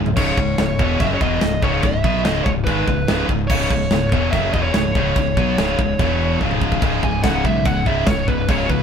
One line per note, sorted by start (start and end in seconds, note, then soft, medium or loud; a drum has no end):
0.00 0.15 C#1 medium
0.00 0.13 C#2 medium
0.00 0.13 G#2 medium
0.06 floor tom medium
0.16 0.36 C#1 loud
0.16 0.37 C#2 medium
0.16 0.37 G#2 loud
0.16 0.38 C#3 loud
0.16 1.00 C#5 loud
0.16 kick loud
0.16 crash loud
0.16 china medium
0.37 0.57 C#1 medium
0.37 0.54 C#2 medium
0.37 0.55 G#2 medium
0.37 kick loud
0.58 0.78 C#1 medium
0.58 0.75 C#2 medium
0.58 0.75 G#2 medium
0.58 snare loud
0.58 china medium
0.79 0.99 E1 loud
0.79 1.00 E2 medium
0.79 1.00 B2 medium
0.79 1.00 E3 loud
0.79 kick loud
1.00 1.20 F#1 loud
1.00 1.21 F#2 medium
1.00 1.21 C#3 medium
1.00 1.21 F#3 loud
1.00 1.05 E5 loud
1.00 kick loud
1.00 china medium
1.14 1.21 C#5 medium
1.21 1.40 E1 medium
1.21 1.42 E2 medium
1.21 1.42 B2 loud
1.21 1.42 E3 loud
1.21 1.60 D#5 loud
1.21 kick loud
1.41 1.62 C#1 medium
1.41 1.59 C#2 medium
1.41 1.59 G#2 medium
1.41 snare loud
1.41 china medium
1.62 1.82 C#1 medium
1.62 1.83 C#2 loud
1.62 1.84 G#2 loud
1.62 1.84 C#3 loud
1.62 1.83 C#5 loud
1.62 kick loud
1.83 2.03 C#1 medium
1.83 2.00 C#2 medium
1.83 2.01 G#2 medium
1.83 2.24 E5 medium
1.83 kick loud
1.83 china medium
2.04 2.24 B1 medium
2.04 2.25 B2 loud
2.04 2.25 F#3 loud
2.04 2.25 B3 loud
2.04 kick loud
2.24 2.45 C#1 medium
2.24 2.45 C#2 loud
2.24 2.45 G#2 loud
2.24 2.46 C#3 loud
2.24 2.43 D#5 loud
2.24 snare loud
2.24 china medium
2.44 2.65 C#1 medium
2.44 2.63 C#2 medium
2.44 2.63 G#2 medium
2.44 2.50 C#5 medium
2.44 kick loud
2.65 2.86 G#1 loud
2.65 2.87 G#2 medium
2.65 2.87 D#3 loud
2.65 2.87 G#3 loud
2.65 3.24 B4 medium
2.65 kick loud
2.65 china medium
2.88 3.07 C#1 medium
2.88 3.05 C#2 medium
2.88 3.05 G#2 medium
2.88 kick medium
3.08 3.28 C#1 medium
3.08 3.29 C#2 loud
3.08 3.29 G#2 loud
3.08 3.29 C#3 loud
3.08 snare loud
3.08 china medium
3.29 3.49 C#1 medium
3.29 3.46 C#2 medium
3.29 3.46 G#2 medium
3.29 kick medium
3.48 3.69 C#1 loud
3.48 3.70 C#2 loud
3.48 3.70 G#2 loud
3.48 3.71 C#3 loud
3.48 4.31 C#5 medium
3.48 kick loud
3.48 china medium
3.48 crash loud
3.71 3.90 C#1 medium
3.71 3.88 C#2 medium
3.71 3.88 G#2 medium
3.71 kick loud
3.91 4.11 C#1 medium
3.91 4.08 C#2 medium
3.91 4.08 G#2 medium
3.91 snare loud
3.91 china medium
4.12 4.32 E1 medium
4.12 4.33 E2 medium
4.12 4.33 B2 medium
4.12 4.33 E3 loud
4.12 kick loud
4.31 4.52 F#1 loud
4.31 4.54 F#2 medium
4.31 4.54 C#3 loud
4.31 4.54 F#3 loud
4.31 4.53 E5 loud
4.31 kick loud
4.31 china medium
4.53 4.73 E1 loud
4.53 4.74 E2 loud
4.53 4.75 B2 loud
4.53 4.75 E3 loud
4.53 4.62 D#5 loud
4.53 kick loud
4.62 4.73 C#5 medium
4.74 4.94 C#1 medium
4.74 4.92 C#2 medium
4.74 4.92 G#2 medium
4.74 6.37 C#5 medium
4.74 snare loud
4.74 china medium
4.95 5.15 C#1 loud
4.95 5.16 C#2 medium
4.95 5.16 G#2 loud
4.95 5.16 C#3 loud
4.95 kick loud
5.16 5.36 C#1 medium
5.16 5.33 C#2 medium
5.16 5.34 G#2 medium
5.16 kick loud
5.16 china medium
5.37 5.57 B1 medium
5.37 5.57 B2 loud
5.37 5.58 F#3 loud
5.37 5.58 B3 loud
5.37 kick loud
5.57 5.77 C#1 loud
5.57 5.77 C#2 medium
5.57 5.78 G#2 loud
5.57 5.79 C#3 loud
5.57 snare loud
5.57 china medium
5.78 5.98 C#1 medium
5.78 5.95 C#2 medium
5.78 5.96 G#2 medium
5.78 kick loud
5.99 6.38 E1 loud
5.99 6.40 E2 medium
5.99 6.41 B2 loud
5.99 6.41 E3 loud
5.99 kick loud
5.99 china medium
6.41 6.80 C#1 medium
6.41 6.81 C#2 loud
6.41 6.81 G#2 loud
6.41 6.82 C#3 loud
6.41 kick medium
6.51 mid tom medium
6.62 kick medium
6.72 kick medium
6.82 7.02 C#1 loud
6.82 7.02 C#2 medium
6.82 7.02 G#2 loud
6.82 7.03 C#3 medium
6.82 kick loud
6.82 crash medium
7.03 7.23 C#1 medium
7.03 7.23 C#2 medium
7.03 7.23 G#2 medium
7.03 7.23 G#5 loud
7.03 kick medium
7.23 7.44 C#1 medium
7.23 7.44 C#2 medium
7.23 7.44 G#2 medium
7.23 7.45 C#3 loud
7.23 7.44 F#5 medium
7.23 kick loud
7.23 snare loud
7.23 crash medium
7.44 7.65 B1 medium
7.44 7.64 C#2 medium
7.44 7.64 G#2 medium
7.44 8.47 C#3 medium
7.44 7.66 E5 medium
7.44 kick medium
7.65 7.85 C#1 medium
7.65 7.85 C#2 medium
7.65 7.85 G#2 medium
7.65 7.86 F#5 medium
7.65 kick loud
7.65 crash medium
7.86 8.06 C#1 medium
7.86 8.06 C#2 medium
7.86 8.06 G#2 medium
7.86 8.06 C#3 loud
7.86 8.07 E5 medium
7.86 kick medium
8.06 8.27 C#1 medium
8.06 8.26 C#2 medium
8.06 8.26 G#2 medium
8.06 8.28 C#5 medium
8.06 kick loud
8.06 snare loud
8.06 crash medium
8.28 8.48 C#1 medium
8.28 8.47 C#2 medium
8.28 8.47 G#2 medium
8.28 8.48 B4 medium
8.28 kick medium
8.48 8.68 C#1 loud
8.48 8.68 C#2 medium
8.48 8.68 G#2 loud
8.48 8.69 C#3 loud
8.48 8.69 C#5 medium
8.48 kick loud
8.48 crash medium
8.69 8.83 C#2 medium
8.69 8.83 G#2 medium
8.69 8.83 B4 medium
8.69 kick medium